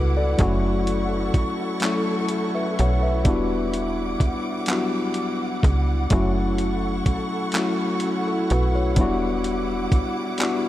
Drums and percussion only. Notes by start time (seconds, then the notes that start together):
0.39 kick, closed hi-hat
0.87 closed hi-hat
1.34 kick, closed hi-hat
1.80 clap, closed hi-hat
2.29 closed hi-hat
2.79 closed hi-hat
3.25 kick, closed hi-hat
3.74 closed hi-hat
4.20 kick, closed hi-hat
4.66 clap, closed hi-hat
5.14 closed hi-hat
5.63 kick, closed hi-hat
6.10 kick, closed hi-hat
6.58 closed hi-hat
7.06 kick, closed hi-hat
7.52 clap, closed hi-hat
8.00 closed hi-hat
8.50 closed hi-hat
8.96 kick, closed hi-hat
9.44 closed hi-hat
9.92 kick, closed hi-hat
10.38 clap, closed hi-hat